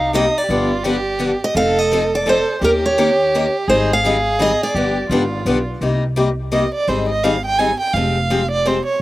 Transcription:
Already playing: C2 D#4 F5
0.13 C3 G3 A#3 D#4 G4 D#5
0.38 D5
0.44 G4
0.49 G1 D3 F3 B3 D4 F4 G4
0.84 D3 F3 B3 D4 G4
1.19 D3 F3 B3 D4 G4
1.44 D#5
1.54 F1 F3 C4 D#4 A4 F5
1.79 D#5
1.92 F3 C4 D#4 A4
2.15 D5
2.26 F3 C4 D#4 A4 C5
2.61 D#2 D#3 A#3 C#4 G4 A#4
2.86 C#5
2.98 D#3 A#3 C#4 G4 A#4
3.35 D#3 A#3 C#4 G4 A#4
3.68 G#1 D#3 G3 C4 D#4 G#4 C5
3.93 F5
4.04 D#3 G3 C4 D#4 G#4
4.39 D#3 G3 C4 D#4 G#4 D#5
4.63 D5
4.75 G1 D3 F3 B3 D4 G4
5.09 G#1 D3 F3 B3 D4 F4 G4
5.45 B1 D3 F3 B3 D4 G4
5.81 C2 C3 G3 A#3 D#4 G4
6.16 C3 G3 A#3 D#4 G4
6.52 C3 G3 A#3 D#4 G4 D#5
6.74 D5
6.87 G#1 D#3 G3 C4 D#4 G#4 C5
7.09 D#5
7.23 D#3 G3 C4 D#4 G#4 F5
7.46 G5
7.58 D#3 G3 C4 D#4 G#4 G#5
7.80 G5
7.93 F1 F3 G#3 C4 G4 F5
8.30 F3 G#3 C4 G4
8.51 D5
8.66 F3 G#3 C4 G4 C5
8.86 C#5

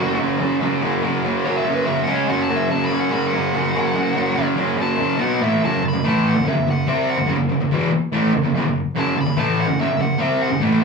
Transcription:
Already playing: F#2 A3 F#4
0.00 C#3 F#3
0.19 F#2 C#3 F#3
0.39 F#2 C#3 F#3
0.61 F#2 C#3 F#3
0.82 F#2 C#3 F#3
1.02 F#2 C#3 F#3
1.23 F#2 C#3 F#3
1.45 F#2 C#3 F#3 C#5
1.57 E5
1.66 F#2 C#3 F#3
1.74 B4
1.86 F#2 C#3 F#3 E5
2.04 C#3 G#3 C#4 F#5
2.15 C#5
2.28 F#2 C#3 F#3 F#5
2.42 A5
2.49 F#2 C#3 F#3
2.56 E5
2.69 F#2 C#3 F#3 A5
2.85 B5
2.91 F#2 C#3 F#3
3.00 F#5
3.11 F#2 C#3 F#3 B5
3.27 F#5
3.33 F#2 C#3 F#3
3.54 F#2 C#3 F#3
3.75 F#2 C#3 F#3
3.94 F#2 C#3 F#3
4.15 F#2 C#3 F#3
4.36 F#2 C#3 F#3
4.56 F#2 C#3 F#3
4.78 F#2 C#3 F#3 A5
4.98 F#2 C#3 F#3
5.18 B2 F#3 B3 F#5
5.41 A2 E3 A3 E5
5.62 F#2 C#3 F#3 A5
5.82 F#2 C#3
5.88 B5
5.93 F#2 C#3
6.03 A2 E3 A3
6.08 A5
6.28 F#5
6.36 F#2 C#3
6.45 F#2 C#3 E5
6.55 F#2 C#3
6.67 F#2 C#3 F#5
6.87 C3 G3 C4 E5
7.11 F#5
7.17 F#2 C#3
7.27 F#2 C#3
7.38 F#2 C#3
7.49 F#2 C#3
7.61 F#2 C#3
7.71 E2 B2 E3
7.92 muted distorted electric guitar stroke
8.12 A2 E3 A3
8.33 F#2 C#3
8.43 F#2 C#3
8.55 F#2 C#3
8.66 F#2 C#3
8.96 F#2 C#3 F#3 A5
9.16 F#2 C#3
9.21 B5
9.26 F#2 C#3
9.36 A2 E3 A3 A5
9.61 F#5
9.67 F#2 C#3
9.79 F#2 C#3 E5
9.89 F#2 C#3
9.99 F#2 C#3 F#5
10.18 C3 G3 C4 E5
10.43 F#5
10.51 F#2 C#3
10.60 A2 E3 A3
10.80 B2

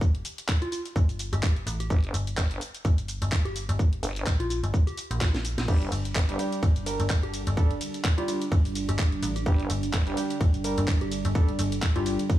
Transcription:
Already playing: G1
0.01 kick, shaker
0.15 closed hi-hat
0.25 open hi-hat, shaker
0.38 closed hi-hat, shaker
0.49 kick, clap, shaker
0.62 F4, closed hi-hat
0.72 F4, open hi-hat, shaker
0.86 closed hi-hat, shaker
0.96 G1, kick, shaker
1.09 open hi-hat, shaker
1.19 open hi-hat, shaker
1.33 G1 G4, closed hi-hat, shaker
1.43 G4, kick, clap, shaker
1.56 closed hi-hat
1.67 A1, open hi-hat, shaker
1.80 G4, closed hi-hat, shaker
1.90 G1 G4, kick, shaker
2.04 closed hi-hat
2.14 G1, open hi-hat, shaker
2.27 closed hi-hat, shaker
2.38 G1, kick, clap, shaker
2.51 closed hi-hat
2.61 open hi-hat, shaker
2.75 closed hi-hat, shaker
2.85 G1, kick, open hi-hat, shaker
2.98 closed hi-hat, shaker
3.08 open hi-hat, shaker
3.22 G1, closed hi-hat, shaker
3.32 G1, kick, clap, shaker
3.45 G4, closed hi-hat
3.56 open hi-hat, shaker
3.69 G1, closed hi-hat, shaker
3.79 kick, shaker
3.93 closed hi-hat
4.03 G1, open hi-hat, shaker
4.16 closed hi-hat, shaker
4.27 A#1, kick, clap, shaker
4.40 F4, closed hi-hat
4.50 F4, open hi-hat, shaker
4.63 G1, closed hi-hat, shaker
4.74 kick, shaker
4.87 G4, open hi-hat, shaker
4.97 open hi-hat, shaker
5.11 A#1, closed hi-hat, shaker
5.21 kick, snare, clap, shaker
5.34 snare, closed hi-hat, shaker
5.45 open hi-hat, shaker
5.58 A#1, snare, closed hi-hat, shaker
5.68 G1 D3 G3 D4 G4, kick, crash, ride, shaker
5.82 closed hi-hat
5.92 G1, open hi-hat, ride, shaker
6.05 closed hi-hat, shaker
6.15 G1, kick, clap, ride, shaker
6.29 G3 D4 G4, closed hi-hat
6.39 G3 D4 G4, open hi-hat, ride, shaker
6.52 closed hi-hat, shaker
6.63 G1, kick, open hi-hat, ride, shaker
6.76 closed hi-hat, shaker
6.86 G3 D4 A#4, open hi-hat, ride, shaker
7.00 G1, closed hi-hat, shaker
7.10 G1, kick, clap, ride, shaker
7.23 G4, closed hi-hat
7.34 open hi-hat, ride, shaker
7.47 G1, closed hi-hat, shaker
7.57 G3 D4 A4, kick, ride, shaker
7.71 closed hi-hat
7.81 open hi-hat, ride, shaker
7.94 closed hi-hat, shaker
8.04 kick, clap, ride, shaker
8.18 G3 D4 F4 G4, closed hi-hat
8.28 G3 D4 F4 G4, open hi-hat, ride, shaker
8.42 closed hi-hat, shaker
8.52 G1, kick, ride, shaker
8.65 open hi-hat, shaker
8.75 open hi-hat, ride, shaker
8.89 G1 G4, closed hi-hat, shaker
8.99 G4, kick, clap, ride, shaker
9.12 closed hi-hat
9.23 A1, open hi-hat, ride, shaker
9.36 G4, closed hi-hat, shaker
9.46 G1 G3 D4 G4, kick, ride, shaker
9.60 closed hi-hat
9.70 G1, open hi-hat, ride, shaker
9.83 closed hi-hat, shaker
9.93 G1, kick, clap, ride, shaker
10.07 G3 D4 G4, closed hi-hat
10.17 G3 D4 G4, open hi-hat, ride, shaker
10.30 closed hi-hat, shaker
10.41 G1, kick, open hi-hat, ride, shaker
10.54 closed hi-hat, shaker
10.64 G3 D4 A#4, open hi-hat, ride, shaker
10.78 G1, closed hi-hat, shaker
10.88 G1, kick, clap, ride, shaker
11.01 G4, closed hi-hat
11.12 open hi-hat, ride, shaker
11.25 G1, closed hi-hat, shaker
11.35 G3 D4 A4, kick, ride, shaker
11.49 closed hi-hat
11.59 G1, open hi-hat, ride, shaker
11.72 closed hi-hat, shaker
11.82 kick, clap, ride, shaker
11.96 G1 G3 D4 F4 G4, closed hi-hat
12.06 G3 D4 F4 G4, open hi-hat, ride, shaker
12.19 closed hi-hat, shaker
12.30 kick, ride, shaker

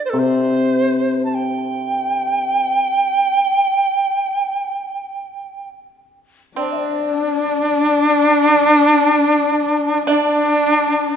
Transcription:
0.05 C5
0.10 C3 A4
0.19 C5
1.25 A5
1.35 G5
6.56 C4 D4 D5
6.63 C5
6.72 E5
6.77 D5
7.19 C#4
7.58 D4
10.06 D4 E5
10.11 D5

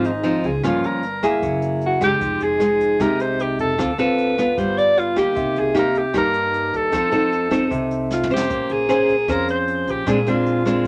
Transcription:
Already playing: G#1 G#2
0.04 D#4, closed hi-hat
0.23 F3 C4 D#4, closed hi-hat
0.44 C#2 G#4, kick, closed hi-hat
0.63 G1 G2 F3 A#3 C#4 F4, kick, cross-stick, closed hi-hat
0.83 G1 A#4, closed hi-hat
1.03 closed hi-hat
1.23 A#3 E4 G#4, kick, cross-stick, closed hi-hat
1.42 F#1 F#3, kick, closed hi-hat
1.62 closed hi-hat
1.81 closed hi-hat
1.86 F#4
2.01 F#1 G#3 D#4 G4, kick, cross-stick, closed hi-hat
2.20 F1 F3, kick, closed hi-hat
2.40 F1 G#4, closed hi-hat
2.60 G#3 D#4, cross-stick, closed hi-hat
2.80 kick, closed hi-hat
3.00 C2 C3 G#3 D#4 G4 A#4, kick, cross-stick, closed hi-hat
3.20 C5, closed hi-hat
3.39 G4, closed hi-hat
3.59 F1 A4, kick, closed hi-hat
3.78 D2 D3 C4 F4 A4, kick, cross-stick, closed hi-hat
3.98 D2 C4 F4 A4 B4, closed hi-hat
4.18 closed hi-hat
4.38 B3 F4, kick, cross-stick, closed hi-hat
4.58 G1 G3 C5, kick, closed hi-hat
4.78 D5, closed hi-hat
4.97 F4, closed hi-hat
5.16 G1 A#3 D#4 G4, kick, cross-stick, closed hi-hat
5.35 C2 C3, kick, closed hi-hat
5.56 C2 G#4, closed hi-hat
5.75 A#3 D#4 G4, cross-stick, closed hi-hat
5.79 A#4
5.95 G4, kick, closed hi-hat
6.13 G2 A#3 D#4 G4, kick, cross-stick, closed hi-hat
6.18 A#4
6.34 closed hi-hat
6.54 closed hi-hat
6.73 D#2 A4, kick, closed hi-hat
6.92 F2 F3 C4 D#4 A4, kick, cross-stick, closed hi-hat
7.11 F2 C4 D#4 A4, closed hi-hat
7.32 closed hi-hat
7.51 C4 D#4 A4, kick, cross-stick, closed hi-hat
7.70 C2 C3, kick, closed hi-hat
7.91 closed hi-hat
8.10 F4, snare
8.23 mid tom
8.30 F2 C#4 G4 C5
8.36 snare
8.50 A#1 A#3, kick, closed hi-hat
8.69 A#1 G#4, closed hi-hat
8.89 C#4 G#4 C5, cross-stick, closed hi-hat
9.09 kick, closed hi-hat
9.28 F2 F3 C#4 G#4 A#4 C5, kick, cross-stick, closed hi-hat
9.48 C5, closed hi-hat
9.68 closed hi-hat
9.87 A#1 G4, kick, closed hi-hat
10.06 A#1 A#2 G#3 C4 D4 G#4, kick, cross-stick, closed hi-hat
10.26 A#1 G#3 C4 D4 F4, closed hi-hat
10.46 closed hi-hat
10.65 G#3 C4 D4, kick, cross-stick, closed hi-hat

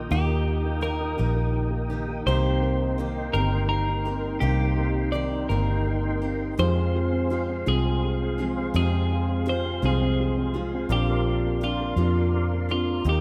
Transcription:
Already playing: D#3 A#3 D#4 F4 G4 A#4 G5 D#6
0.09 D#2 A#2 D#3 A#3 D#4 G4
0.27 A#3
0.45 D#4
0.64 A#3
0.81 D#3 A#3 D#4 G4 A#4
1.00 A#3
1.17 A#1 D#3 A#3 D#4 G4
1.35 A#3
1.53 D#4
1.71 A#3
1.90 D#3 A#3 D#4 G4
2.08 A#3
2.26 C2 C3 D#3 A#3 C4 G4 C5 C6
2.44 G3
2.62 A#3
2.81 D#4
2.98 D#3 A#3 C4 G4
3.17 D#4
3.33 G1 C3 D#3 G3 A#3 C4 G4 A#4
3.53 D#4
3.69 A#3 A#4
3.89 D#4
4.05 A#3 C4 G4
4.24 D#4
4.40 C2 G2 C3 D#3 A#3 C4 G4
4.60 G3
4.79 A#3
4.95 D#4
5.12 D#3 A#3 C4 G4 D5
5.32 D#4
5.49 G1 C3 D#3 G3 A#3 C4 G4 A#4
5.69 D#4
5.87 A#3
6.05 D#4
6.22 A#3 C4 G4
6.41 D#4
6.58 F2 C3 F3 G#3 C4 F4 G#4 C5 F5
6.78 C4
6.95 F4
7.12 C4
7.30 F3 G#3 C4 F4
7.49 C4
7.66 C2 F2 C3 F3 G#3 C4 F4 G#4
7.85 C4
8.03 F4
8.22 C4
8.38 F3 G#3 C4 F4
8.57 C4
8.74 F2 C3 F3 G#3 C4 F4 G#4
8.93 C4
9.12 F4
9.28 C4
9.46 F3 G#3 C4 F4 C5
9.65 C4
9.82 C2 F2 C3 F3 G#3 C4 F4 G#4
10.02 C4
10.20 F4
10.37 C4
10.54 F3 G#3 C4 F4
10.74 C4
10.89 A#1 A#2 F3 A#3 C4 D4 F4 G4 A#4 D5
11.09 A#3
11.28 A#3
11.46 A#3
11.61 F3 A#3 C4 D4 F4
11.81 A#3
11.96 F2 A#2 F3 C4 D4 F4
12.17 A#3
12.35 A#3
12.54 A#3
12.69 A#3 C4 D4 F4
12.90 A#3
13.04 D#2 D#3 A#3 D#4 G4 A#4 D#5 G5 D#6
13.09 G4

